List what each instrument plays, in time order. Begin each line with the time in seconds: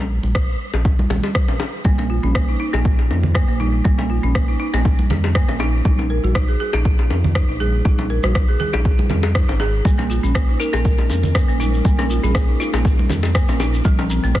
Already playing: analog synth bass A#1
0.23 analog synth bass A#1, high conga
0.35 kick, cross-stick
0.74 analog synth bass A#1, high bongo
0.85 kick, low bongo
0.99 high conga
1.10 analog synth bass A#1, high bongo, low bongo, high conga, low conga
1.23 high bongo
1.35 kick, cross-stick
1.48 analog synth bass A#1, low bongo
1.60 high bongo, low bongo
1.84 analog synth bass A#1, marimba A#3, kick, high conga
1.98 marimba A#3, low bongo
2.10 marimba F4
2.23 analog synth bass A#1, marimba C#4, high conga
2.35 marimba A#3, kick, cross-stick
2.49 marimba D#4
2.60 marimba D#4
2.73 analog synth bass A#1, marimba A#3, high bongo
2.85 kick
2.99 high bongo
3.10 analog synth bass F2, low bongo
3.23 low conga
3.35 marimba A#3, kick, cross-stick
3.48 analog synth bass A#1, marimba A#3
3.60 marimba D#4, high conga
3.85 analog synth bass A#1, marimba A#3, kick, high conga
3.98 marimba A#3, low bongo
4.10 marimba F4
4.23 analog synth bass A#1, marimba C#4, high conga
4.35 marimba A#3, kick, cross-stick
4.48 marimba D#4
4.60 marimba D#4
4.73 analog synth bass A#1, marimba A#3, high bongo
4.85 kick, low bongo
4.99 high conga
5.10 analog synth bass F2, high bongo, low bongo, high conga, low conga
5.24 high bongo
5.35 marimba A#3, kick, cross-stick
5.49 analog synth bass A#1, marimba A#3, low bongo
5.60 marimba D#4, high bongo, low bongo
5.85 analog synth bass A#1, marimba D#4, kick, high conga
5.99 marimba D#4, low bongo
6.10 marimba A#4
6.24 analog synth bass A#1, marimba F#4, high conga
6.35 marimba D#4, kick, cross-stick
6.49 marimba G#4
6.60 marimba G#4
6.73 analog synth bass A#1, marimba D#4, high bongo
6.85 kick
6.99 high bongo
7.10 analog synth bass F2, low bongo
7.24 low conga
7.35 marimba D#4, kick, cross-stick
7.49 analog synth bass A#1, marimba D#4
7.60 marimba G#4, high conga
7.85 analog synth bass A#1, marimba D#4, kick, high conga
7.99 marimba D#4, low bongo
8.10 marimba A#4
8.23 analog synth bass A#1, marimba F#4, cross-stick, high conga
8.35 marimba D#4, kick, cross-stick
8.49 marimba G#4
8.60 marimba G#4, high conga, low conga
8.73 analog synth bass A#1, marimba D#4, high bongo
8.85 kick, low bongo
8.99 high conga
9.10 analog synth bass F2, high bongo, low bongo, high conga, low conga
9.23 high bongo
9.35 marimba D#4, kick, cross-stick
9.48 analog synth bass G#1, marimba D#4, low bongo
9.60 marimba G#4, high bongo, low bongo
9.85 analog synth bass A#1, analog synth pad G#3 C#4 A#4, marimba A#3, kick, high conga, shekere
9.98 marimba A#3, low bongo
10.10 marimba F4, shekere
10.23 analog synth bass A#1, marimba C#4, high conga, shekere
10.35 marimba A#3, kick, cross-stick, shekere
10.48 marimba D#4
10.60 marimba D#4, kalimba A#4, shekere
10.73 analog synth bass A#1, marimba A#3, high bongo, shekere
10.85 kick, shekere
10.98 high bongo
11.10 analog synth bass F2, low bongo, shekere
11.23 low conga, shekere
11.35 marimba A#3, kick, cross-stick, shekere
11.48 analog synth bass A#1, marimba A#3, shekere
11.60 marimba D#4, high conga, shekere
11.74 shekere
11.85 analog synth bass A#1, marimba A#3, kick, high conga, shekere
11.99 marimba A#3, low bongo
12.10 marimba F4, shekere
12.23 analog synth bass A#1, marimba C#4, kalimba G#4, high conga, shekere
12.35 marimba A#3, kick, cross-stick, shekere
12.48 marimba D#4
12.60 marimba D#4, kalimba F4, shekere
12.73 analog synth bass A#1, marimba A#3, high bongo, shekere
12.85 kick, low bongo, shekere
12.99 high conga
13.09 analog synth bass F2, high bongo, low bongo, high conga, low conga, shekere
13.23 high bongo, shekere
13.35 marimba A#3, kick, cross-stick, shekere
13.48 analog synth bass A#1, marimba A#3, low bongo, shekere
13.60 marimba D#4, high bongo, low bongo, shekere
13.74 shekere
13.84 analog synth bass A#1, analog synth pad F3 D#4 A4, marimba F3, kick, high conga, shekere
13.98 marimba F3, low bongo
14.10 marimba C4, shekere
14.24 analog synth bass A#1, marimba A3, high conga, shekere
14.35 marimba F3, kick, cross-stick, shekere